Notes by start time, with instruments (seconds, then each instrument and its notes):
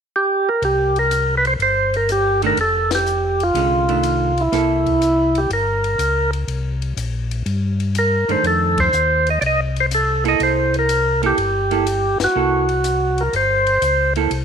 0.16 tonewheel organ G4
0.49 tonewheel organ A#4
0.62 tonewheel organ C2 G4, ride
0.96 tonewheel organ A#4, ride
1.11 hi-hat pedal, ride
1.37 tonewheel organ B4
1.45 tonewheel organ C5, ride
1.59 tonewheel organ G1 C5, ride
1.94 tonewheel organ A#4, ride
2.09 tonewheel organ G4, hi-hat pedal, ride
2.42 hollow-body jazz guitar D#3 A3 D4, ride
2.47 tonewheel organ A#4
2.56 tonewheel organ F1, ride
2.61 tonewheel organ A4
2.91 snare, ride
2.95 tonewheel organ G4
3.06 hi-hat pedal
3.40 tonewheel organ F4, ride
3.54 tonewheel organ C2, hollow-body jazz guitar D3 G#3 C#4, ride
3.88 hollow-body jazz guitar D#3 A3 D4, ride
4.03 hi-hat pedal, ride
4.37 tonewheel organ E4, ride
4.52 tonewheel organ C2, hollow-body jazz guitar A#3 E4 A4, snare, ride
4.86 kick, ride
5.02 hi-hat pedal, ride
5.35 tonewheel organ G4, ride
5.50 tonewheel organ G1 A#4, ride
5.84 ride
5.98 tonewheel organ C#2, hi-hat pedal, ride
6.33 ride
6.48 tonewheel organ C2, ride
6.82 ride
6.97 tonewheel organ A#1, hi-hat pedal, ride
7.31 ride
7.46 tonewheel organ G2, ride
7.80 ride
7.95 tonewheel organ A#4, hi-hat pedal, ride
8.29 tonewheel organ G2 C5, hollow-body jazz guitar D#3 A3 D4, ride
8.43 tonewheel organ F2 A4, ride
8.78 tonewheel organ C5, kick, ride
8.93 tonewheel organ D#2, hi-hat pedal
9.27 tonewheel organ D#5, ride
9.41 tonewheel organ C2 D5, ride
9.46 tonewheel organ D#5
9.76 ride
9.80 tonewheel organ C5
9.91 tonewheel organ A4, hi-hat pedal, ride
10.24 hollow-body jazz guitar A#3 E4 A4, ride
10.28 tonewheel organ D#5
10.40 tonewheel organ C2 C5, ride
10.74 ride
10.79 tonewheel organ A#4
10.89 hi-hat pedal, ride
11.23 hollow-body jazz guitar A#3 E4 A4, tonewheel organ G4, ride
11.37 tonewheel organ G1, ride
11.71 hollow-body jazz guitar A#3 E4 A4, ride
11.87 hi-hat pedal, ride
12.20 tonewheel organ G1, snare, ride
12.24 tonewheel organ F#4
12.35 tonewheel organ C2, hollow-body jazz guitar A#3 E4 A4
12.69 ride
12.84 hi-hat pedal, ride
13.18 tonewheel organ A#4, ride
13.33 tonewheel organ G1 C5, ride
13.67 ride
13.82 tonewheel organ C#2, hi-hat pedal, ride
14.16 hollow-body jazz guitar A#3 E4 A4, ride
14.31 tonewheel organ C2, ride